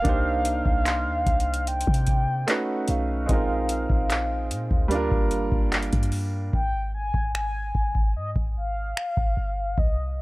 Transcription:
0.00 2.43 A#3 medium
0.00 2.43 D4 medium
0.00 1.69 F5 loud
0.05 0.63 C2 loud
0.05 2.44 D#4 medium
0.05 2.45 G4 medium
0.05 2.46 C5 medium
0.05 kick loud
0.05 closed hi-hat medium
0.45 closed hi-hat medium
0.66 1.08 C2 loud
0.66 kick medium
0.86 2.46 C6 medium
0.86 clap loud
0.86 closed hi-hat medium
1.06 1.25 D#2 loud
1.26 1.85 C2 loud
1.26 kick medium
1.26 closed hi-hat soft
1.40 closed hi-hat medium
1.54 closed hi-hat medium
1.67 2.50 G5 loud
1.67 closed hi-hat medium
1.81 closed hi-hat medium
1.87 2.46 C3 loud
1.87 kick loud
1.94 closed hi-hat medium
2.07 kick medium
2.07 closed hi-hat medium
2.47 3.29 A3 medium
2.47 3.29 C#4 medium
2.47 3.28 D#4 medium
2.47 3.30 F#4 medium
2.47 3.30 B4 medium
2.47 2.91 F#5 loud
2.47 clap loud
2.47 closed hi-hat medium
2.88 3.28 B1 loud
2.88 5.32 F5 loud
2.88 closed hi-hat medium
3.26 3.88 A#1 loud
3.26 4.87 G#3 medium
3.26 4.87 C4 medium
3.26 4.88 D#4 medium
3.26 kick loud
3.26 closed hi-hat medium
3.32 4.89 F4 medium
3.32 4.90 A#4 medium
3.69 closed hi-hat medium
3.90 4.52 A#1 loud
3.90 kick loud
4.10 clap loud
4.10 closed hi-hat medium
4.51 4.70 A#2 loud
4.51 closed hi-hat medium
4.71 5.10 D2 loud
4.71 kick loud
4.88 6.49 G3 medium
4.88 6.49 A#3 medium
4.88 6.50 D4 medium
4.88 closed hi-hat medium
4.94 6.51 F4 medium
4.94 6.52 A#4 medium
5.12 5.50 G1 loud
5.12 kick loud
5.31 closed hi-hat medium
5.52 5.91 G1 loud
5.52 kick medium
5.72 clap loud
5.72 closed hi-hat soft
5.83 closed hi-hat soft
5.93 6.51 G2 loud
5.93 kick medium
5.93 closed hi-hat medium
6.03 closed hi-hat medium
6.12 open hi-hat medium
6.53 7.12 G#1 loud
6.53 6.91 G5 loud
6.53 kick loud
6.95 7.32 G#5 loud
7.14 7.73 G#1 medium
7.14 kick medium
7.35 8.12 G#5 loud
7.35 finger snap loud
7.75 8.17 G#1 loud
7.75 kick medium
7.95 kick medium
8.15 8.35 G#2 medium
8.15 8.31 D#5 medium
8.36 8.94 G#1 loud
8.36 kick medium
8.57 9.80 F5 loud
8.97 finger snap loud
9.17 9.37 G1 medium
9.17 kick medium
9.37 9.76 G1 medium
9.78 10.22 C2 loud
9.78 10.18 D#5 medium
9.78 kick loud

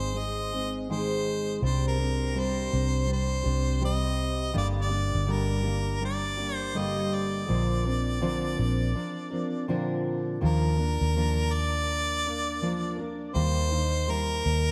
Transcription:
0.00 1.58 G#1 medium
0.00 0.12 G#3 soft
0.00 0.13 C4 soft
0.00 0.14 D#4 soft
0.00 0.14 G#4 soft
0.00 0.20 C5 medium
0.14 0.51 G#3 medium
0.14 0.51 C4 medium
0.14 0.52 D#4 medium
0.14 0.51 G#4 medium
0.18 0.74 D#5 loud
0.52 0.89 G#3 soft
0.52 0.89 C4 soft
0.52 0.89 D#4 soft
0.52 0.89 G#4 soft
0.89 1.62 G#2 medium
0.89 1.62 D#3 medium
0.89 1.62 G#3 medium
0.89 1.63 C4 medium
0.89 1.63 D#4 medium
0.89 1.63 G#4 medium
0.89 1.59 C5 medium
1.62 2.68 C2 medium
1.62 1.99 C3 medium
1.62 1.99 G3 medium
1.62 1.99 C4 medium
1.62 1.98 D4 medium
1.62 1.97 G4 medium
1.62 1.84 C5 medium
1.88 2.41 A#4 medium
1.98 2.34 C4 soft
1.98 2.34 D4 soft
1.98 2.35 G4 soft
2.34 2.71 C3 medium
2.34 2.72 G3 medium
2.34 2.72 C4 medium
2.34 2.72 D4 medium
2.34 2.70 G4 medium
2.40 3.11 C5 medium
2.71 3.42 C2 medium
2.71 3.06 C4 soft
2.71 3.07 D4 soft
2.71 3.08 G4 medium
3.06 3.44 G3 soft
3.06 3.45 C4 medium
3.06 3.44 D4 medium
3.06 3.42 G4 medium
3.13 3.80 C5 medium
3.43 4.52 C2 medium
3.43 3.81 C4 soft
3.43 3.82 D4 soft
3.43 3.81 G4 soft
3.80 4.53 C3 medium
3.80 4.53 G3 medium
3.80 4.53 C4 medium
3.80 4.54 G4 medium
3.85 4.53 D#5 medium
4.53 5.10 G1 medium
4.53 4.91 G2 medium
4.53 4.91 D3 medium
4.53 4.91 G3 medium
4.53 4.90 A#3 medium
4.53 4.89 D4 medium
4.53 4.88 G4 medium
4.57 4.67 D5 medium
4.82 5.34 D5 loud
4.89 5.27 G3 soft
4.89 5.27 A#3 soft
4.89 5.27 D4 medium
4.89 5.27 G4 medium
5.15 7.45 G1 loud
5.26 5.64 G2 medium
5.26 5.65 D3 medium
5.26 5.64 G3 medium
5.26 5.64 A#3 medium
5.26 5.63 D4 medium
5.26 5.62 G4 medium
5.32 6.04 A#4 medium
5.63 5.99 G3 soft
5.63 6.00 A#3 soft
5.63 6.01 D4 soft
5.63 6.01 G4 soft
6.00 6.38 G3 medium
6.00 6.39 A#3 soft
6.00 6.37 D4 medium
6.00 6.36 G4 medium
6.05 6.55 D5 medium
6.37 6.74 G3 soft
6.37 6.74 A#3 soft
6.37 6.75 D4 soft
6.37 6.75 G4 medium
6.55 6.80 C5 medium
6.74 7.47 G2 medium
6.74 7.47 D3 medium
6.74 7.48 G3 medium
6.74 7.48 A#3 medium
6.74 7.49 G4 medium
6.78 7.16 D#5 medium
7.14 9.70 D5 medium
7.47 8.55 A#1 medium
7.47 7.85 A#2 medium
7.47 7.85 D3 medium
7.47 7.85 F3 medium
7.47 7.85 C4 medium
7.47 7.84 D4 medium
7.47 7.83 A#4 medium
7.84 8.21 F3 soft
7.84 8.21 C4 soft
7.84 8.21 D4 soft
7.84 8.22 A#4 soft
8.21 8.58 A#2 medium
8.21 8.58 D3 medium
8.21 8.58 F3 medium
8.21 8.58 C4 loud
8.21 8.57 D4 medium
8.21 8.56 A#4 loud
8.57 8.93 A#1 loud
8.57 8.93 F3 medium
8.57 8.94 C4 medium
8.57 8.94 D4 medium
8.57 8.95 A#4 medium
8.94 9.32 F3 medium
8.94 9.31 C4 medium
8.94 9.30 D4 medium
8.94 9.29 A#4 medium
9.31 9.67 F3 medium
9.31 9.68 C4 medium
9.31 9.68 D4 medium
9.31 9.68 A#4 medium
9.68 10.42 A#2 medium
9.68 10.40 D3 medium
9.68 10.41 F3 medium
9.68 10.41 C4 medium
9.68 10.41 D4 medium
9.68 10.42 A#4 medium
10.41 10.97 D#2 loud
10.41 10.78 D#3 medium
10.41 10.78 F3 medium
10.41 10.78 A#3 medium
10.41 10.78 D4 medium
10.41 10.76 A#4 medium
10.41 11.55 A#4 medium
10.78 11.15 A#3 soft
10.78 11.16 D4 medium
10.78 11.15 A#4 medium
11.01 13.31 D#2 medium
11.16 12.25 F3 medium
11.16 12.28 A#3 medium
11.16 12.26 D4 medium
11.16 12.26 A#4 medium
11.54 12.99 D5 loud
12.26 12.62 A#3 soft
12.26 12.62 D4 medium
12.26 12.62 A#4 medium
12.62 12.99 F3 medium
12.62 12.99 A#3 medium
12.62 12.98 D4 medium
12.62 12.97 A#4 medium
12.98 13.34 A#3 soft
12.98 13.35 D4 medium
12.98 13.35 A#4 medium
13.34 14.41 D#2 loud
13.34 13.71 D#3 medium
13.34 13.71 G3 medium
13.34 13.72 A#3 medium
13.34 13.71 D#4 medium
13.34 13.70 A#4 medium
13.34 14.12 C5 loud
13.71 14.07 A#3 soft
13.71 14.08 D#4 medium
13.71 14.08 A#4 medium
14.07 14.72 G3 medium
14.07 14.72 A#3 medium
14.07 14.72 D#4 medium
14.07 14.72 A#4 medium
14.07 14.72 A#4 loud
14.46 14.72 D#2 medium

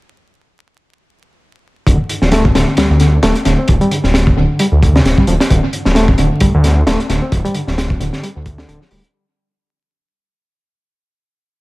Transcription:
1.87 1.96 D1 medium
1.87 1.97 D3 medium
1.87 kick loud
1.87 closed hi-hat medium
2.09 closed hi-hat medium
2.22 2.51 D1 medium
2.22 2.30 F3 medium
2.22 snare medium
2.32 2.44 A3 loud
2.32 snare loud
2.32 closed hi-hat medium
2.45 kick medium
2.55 2.64 D1 medium
2.55 2.77 D3 medium
2.55 snare loud
2.55 closed hi-hat medium
2.77 2.88 D2 soft
2.77 2.88 G3 medium
2.77 snare loud
2.77 closed hi-hat medium
2.90 3.19 D2 medium
3.00 3.06 D3 medium
3.00 snare soft
3.00 closed hi-hat medium
3.23 3.32 D1 loud
3.23 3.35 A3 loud
3.23 snare loud
3.23 closed hi-hat loud
3.35 closed hi-hat soft
3.45 3.55 D1 loud
3.45 3.57 D3 medium
3.45 snare soft
3.45 closed hi-hat medium
3.58 3.66 C4 medium
3.68 3.78 D1 loud
3.68 kick loud
3.68 closed hi-hat medium
3.81 3.91 G3 loud
3.81 closed hi-hat soft
3.91 3.97 D3 medium
3.91 closed hi-hat medium
4.04 4.32 D1 medium
4.04 snare soft
4.14 snare loud
4.14 closed hi-hat medium
4.27 kick medium
4.36 4.46 D1 medium
4.36 4.58 D3 medium
4.59 4.66 G3 medium
4.59 closed hi-hat medium
4.72 5.00 D2 medium
4.82 kick medium
4.82 closed hi-hat medium
4.95 5.03 C3 medium
4.95 snare loud
5.04 5.14 D1 loud
5.04 snare loud
5.04 closed hi-hat medium
5.18 5.26 G3 medium
5.18 kick medium
5.27 5.37 D1 loud
5.27 5.34 F3 loud
5.27 closed hi-hat medium
5.40 snare loud
5.40 closed hi-hat medium
5.50 5.60 D1 loud
5.50 5.60 D3 medium
5.50 kick loud
5.50 closed hi-hat medium
5.73 closed hi-hat medium
5.85 6.14 D1 medium
5.85 5.94 F3 medium
5.85 snare medium
5.95 6.08 A3 loud
5.95 snare loud
5.95 closed hi-hat medium
6.08 kick loud
6.18 6.28 D1 medium
6.18 6.40 D3 medium
6.18 closed hi-hat medium
6.40 6.51 D2 soft
6.40 6.51 G3 medium
6.40 kick loud
6.40 closed hi-hat medium
6.54 6.83 D2 medium
6.64 6.70 D3 medium
6.64 snare soft
6.64 closed hi-hat medium
6.87 6.96 D1 loud
6.87 6.99 A3 loud
6.87 snare loud
6.87 closed hi-hat medium
7.00 closed hi-hat soft
7.09 7.19 D1 loud
7.09 7.21 D3 medium
7.09 snare soft
7.09 closed hi-hat medium
7.22 7.30 C4 medium
7.32 7.41 D1 loud
7.32 kick loud
7.32 closed hi-hat medium
7.45 7.54 G3 loud
7.45 closed hi-hat soft
7.55 7.61 D3 medium
7.55 closed hi-hat medium
7.68 7.96 D1 medium
7.68 snare soft
7.78 snare loud
7.78 closed hi-hat medium
7.90 kick loud
8.00 8.10 D1 medium
8.00 8.22 D3 medium
8.00 closed hi-hat medium
8.13 snare soft
8.23 8.29 G3 medium
8.23 closed hi-hat medium
8.36 8.64 D2 medium
8.46 kick loud
8.46 closed hi-hat medium
8.58 8.66 D3 loud
8.58 snare loud
8.68 8.78 D1 loud
8.68 8.78 D3 loud
8.68 closed hi-hat medium
8.81 8.86 F3 medium
8.81 snare soft
8.91 9.01 D1 loud
8.91 9.01 G3 medium
8.91 open hi-hat medium
9.04 closed hi-hat soft

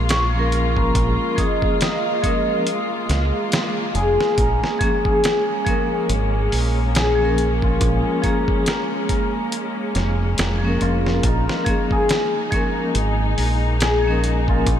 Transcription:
0.00 0.91 A#1 medium
0.00 14.79 G#3 medium
0.00 14.79 A#3 medium
0.00 0.46 F4 medium
0.00 4.39 F4 medium
0.09 2.65 C#5 loud
0.09 snare loud
0.09 closed hi-hat medium
0.30 1.31 F3 medium
0.30 1.33 A#3 medium
0.36 1.35 C#4 medium
0.36 1.36 A#4 loud
0.52 closed hi-hat medium
0.77 3.60 A#4 medium
0.77 kick loud
0.95 1.16 A#1 loud
0.95 kick loud
0.95 closed hi-hat medium
1.36 1.75 F3 medium
1.36 1.76 A#3 medium
1.36 1.77 C#4 medium
1.36 1.81 D#5 medium
1.36 kick loud
1.36 closed hi-hat medium
1.41 1.77 G#4 loud
1.62 kick loud
1.81 2.25 D#5 medium
1.81 snare loud
1.81 closed hi-hat medium
2.22 2.61 F3 medium
2.22 2.61 A#3 medium
2.22 2.62 C#4 medium
2.22 4.63 D#5 medium
2.22 kick medium
2.22 closed hi-hat medium
2.27 2.63 A#4 loud
2.67 closed hi-hat medium
3.09 3.31 C#2 medium
3.09 snare medium
3.09 closed hi-hat medium
3.52 snare loud
3.52 closed hi-hat medium
3.95 4.16 F1 loud
3.95 5.05 G#4 medium
3.95 closed hi-hat medium
4.21 snare medium
4.38 4.59 A#1 loud
4.38 11.25 C#4 medium
4.38 7.21 A#4 loud
4.38 kick loud
4.38 closed hi-hat medium
4.64 snare medium
4.79 5.18 F3 medium
4.79 5.19 A#3 medium
4.79 5.19 C#4 medium
4.79 kick loud
4.79 closed hi-hat medium
4.84 5.20 G#4 loud
5.05 6.95 G#4 medium
5.05 kick medium
5.24 snare loud
5.24 closed hi-hat medium
5.65 6.04 F3 medium
5.65 6.04 A#3 medium
5.65 6.05 C#4 medium
5.65 kick medium
5.65 closed hi-hat medium
5.70 6.06 A#4 loud
6.09 6.48 G#1 medium
6.09 closed hi-hat medium
6.52 7.77 A#1 medium
6.52 open hi-hat medium
6.95 9.99 G#4 loud
6.95 snare loud
6.95 closed hi-hat medium
7.16 8.17 F3 loud
7.16 8.19 A#3 medium
7.22 8.20 C#4 medium
7.22 8.22 A#4 loud
7.38 closed hi-hat medium
7.62 10.81 F4 medium
7.62 kick medium
7.81 8.02 A#1 loud
7.81 kick loud
7.81 closed hi-hat medium
8.22 8.61 F3 loud
8.22 8.62 A#3 medium
8.22 8.62 C#4 medium
8.22 8.67 A#4 medium
8.22 kick medium
8.22 closed hi-hat medium
8.27 8.63 G#4 loud
8.48 kick loud
8.66 9.09 A#4 medium
8.66 snare loud
8.66 closed hi-hat medium
9.09 11.24 A#4 medium
9.09 kick loud
9.09 closed hi-hat medium
9.52 closed hi-hat loud
9.95 10.34 F1 loud
9.95 snare soft
9.95 closed hi-hat medium
10.38 10.77 F1 medium
10.38 snare loud
10.38 closed hi-hat medium
10.58 11.60 F3 medium
10.58 11.62 A#3 medium
10.65 11.63 C#4 medium
10.65 11.65 A#4 loud
10.81 11.19 F1 medium
10.81 14.18 F4 loud
10.81 closed hi-hat medium
11.06 snare medium
11.23 11.45 A#1 loud
11.23 14.79 D#4 medium
11.23 14.08 A#4 loud
11.23 kick loud
11.23 closed hi-hat loud
11.49 snare medium
11.65 12.04 F3 loud
11.65 12.04 A#3 medium
11.65 12.05 C#4 medium
11.65 kick loud
11.65 closed hi-hat medium
11.70 12.06 G#4 loud
11.91 13.81 G#4 loud
11.91 kick medium
12.09 snare loud
12.09 closed hi-hat medium
12.51 12.89 F3 medium
12.51 12.90 A#3 medium
12.51 12.91 C#4 medium
12.51 kick loud
12.51 closed hi-hat medium
12.56 12.92 A#4 loud
12.95 13.33 G#1 loud
12.95 closed hi-hat loud
13.38 14.63 A#1 medium
13.38 open hi-hat medium
13.80 14.79 G#4 loud
13.80 snare loud
13.80 closed hi-hat medium
14.01 14.79 F3 loud
14.01 14.79 A#3 medium
14.08 14.79 C#4 loud
14.08 14.79 A#4 loud
14.24 closed hi-hat medium
14.48 14.79 F4 medium
14.48 kick medium
14.67 14.79 A#1 loud
14.67 kick loud
14.67 closed hi-hat medium

